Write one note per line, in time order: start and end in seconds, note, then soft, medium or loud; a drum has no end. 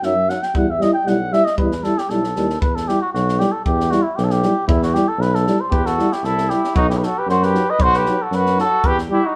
0.03 0.32 F#2 medium
0.03 0.14 F#3 medium
0.03 0.15 D#4 medium
0.03 0.31 E5 loud
0.03 snare soft
0.28 0.39 F#3 medium
0.28 0.40 D#4 soft
0.28 0.44 F#5 loud
0.28 snare soft
0.43 0.55 G5 medium
0.43 snare soft
0.55 0.83 E2 medium
0.55 0.65 G3 medium
0.55 0.66 E4 medium
0.55 0.72 F#5 medium
0.55 kick medium
0.70 0.83 E5 medium
0.79 0.90 G3 medium
0.79 0.93 E4 medium
0.79 0.93 D#5 loud
0.79 snare soft
0.93 1.09 G5 medium
1.06 1.35 B1 medium
1.06 1.16 G3 medium
1.06 1.17 E4 medium
1.06 1.34 F#5 loud
1.06 snare soft
1.32 1.42 G3 medium
1.32 1.44 E4 medium
1.32 1.46 E5 loud
1.32 snare soft
1.45 1.57 D#5 medium
1.45 snare soft
1.58 1.87 E2 medium
1.58 1.68 G3 medium
1.58 1.70 E4 medium
1.58 1.85 B4 medium
1.58 kick medium
1.72 snare soft
1.83 1.94 G3 medium
1.83 1.96 E4 medium
1.83 2.00 A4 medium
1.83 snare soft
1.98 2.11 G4 medium
1.98 snare soft
2.09 2.33 B1 medium
2.09 2.20 G3 medium
2.09 2.22 E4 medium
2.09 2.60 A4 medium
2.09 snare soft
2.24 snare soft
2.36 2.60 D#2 loud
2.36 2.47 G3 medium
2.36 2.47 E4 medium
2.36 snare soft
2.50 snare soft
2.61 2.90 E2 medium
2.61 2.77 B4 medium
2.61 kick loud
2.75 2.89 A4 medium
2.75 snare soft
2.88 2.98 G3 medium
2.88 2.99 E4 medium
2.88 3.01 G4 medium
2.88 snare soft
3.01 3.12 F#4 medium
3.13 3.42 B1 loud
3.13 3.41 F#4 medium
3.13 snare soft
3.29 snare soft
3.38 3.49 G3 medium
3.38 3.51 E4 soft
3.38 3.53 G4 medium
3.38 snare soft
3.52 3.64 A4 medium
3.65 3.95 E2 loud
3.65 3.92 G4 medium
3.65 kick medium
3.80 snare soft
3.91 4.01 G3 medium
3.91 4.02 E4 medium
3.91 4.04 F#4 loud
3.91 snare soft
4.02 4.17 E4 medium
4.16 4.46 B1 loud
4.16 4.25 G4 medium
4.16 snare soft
4.24 4.33 A4 medium
4.30 4.67 G4 loud
4.30 snare soft
4.43 4.54 G3 medium
4.43 4.54 E4 medium
4.43 snare soft
4.67 4.96 E2 loud
4.67 4.81 E4 medium
4.67 kick loud
4.83 4.95 F#4 medium
4.83 snare soft
4.94 5.05 G3 medium
4.94 5.06 E4 medium
4.94 5.09 G4 medium
4.94 snare soft
5.08 5.23 A4 medium
5.18 5.47 B1 loud
5.18 5.36 B4 loud
5.18 snare soft
5.35 5.62 A4 medium
5.35 snare soft
5.47 5.57 G3 medium
5.47 5.58 E4 medium
5.47 snare soft
5.61 5.75 C5 medium
5.71 6.00 E2 medium
5.71 5.87 G4 medium
5.71 5.87 B4 loud
5.71 kick medium
5.86 6.14 F#4 medium
5.86 6.14 A4 medium
5.86 snare soft
5.98 6.09 G3 medium
5.98 6.09 E4 medium
5.98 snare soft
6.12 6.24 E4 medium
6.12 6.26 G4 medium
6.12 snare soft
6.23 6.52 C2 loud
6.23 6.51 E4 medium
6.23 6.51 A4 loud
6.23 snare soft
6.38 snare soft
6.50 6.60 G3 medium
6.50 6.61 E4 soft
6.50 6.77 E4 medium
6.50 6.75 G4 medium
6.50 snare soft
6.64 snare soft
6.75 7.04 B1 loud
6.75 6.89 D#4 loud
6.75 6.88 F#4 loud
6.75 kick loud
6.90 6.99 E4 medium
6.90 6.99 G4 medium
6.90 snare soft
6.98 7.07 G4 medium
6.98 7.05 B4 medium
7.02 7.13 F#3 medium
7.02 7.12 D#4 medium
7.02 7.19 F#4 medium
7.02 7.20 A4 medium
7.02 snare soft
7.18 7.29 G4 medium
7.18 7.29 B4 medium
7.27 7.55 F#2 loud
7.27 7.46 F#4 medium
7.27 7.45 C5 loud
7.27 snare soft
7.43 7.72 G4 medium
7.43 7.71 B4 loud
7.43 snare soft
7.54 7.64 F#3 medium
7.54 7.64 D#4 medium
7.54 snare soft
7.70 7.86 B4 medium
7.70 7.83 D#5 loud
7.78 8.07 B1 loud
7.78 7.97 C5 loud
7.78 kick loud
7.84 7.99 F#4 loud
7.94 8.23 B4 loud
7.94 snare soft
7.98 8.25 G4 medium
8.06 8.17 F#3 medium
8.06 8.17 D#4 medium
8.06 snare soft
8.22 8.37 F#4 medium
8.22 8.36 A4 medium
8.31 8.59 F#2 loud
8.31 8.59 B4 loud
8.31 snare soft
8.37 8.60 F#4 medium
8.46 snare soft
8.57 8.68 F#3 medium
8.57 8.67 D#4 medium
8.57 8.87 A4 loud
8.57 snare soft
8.64 8.89 F#4 loud
8.83 9.12 E2 medium
8.83 8.99 G4 loud
8.83 8.98 B4 loud
8.83 kick loud
8.98 snare soft
9.09 9.19 G3 medium
9.09 9.21 E4 medium
9.09 9.26 G4 medium
9.13 9.28 E4 loud
9.24 9.36 D#4 medium
9.24 9.36 F#4 medium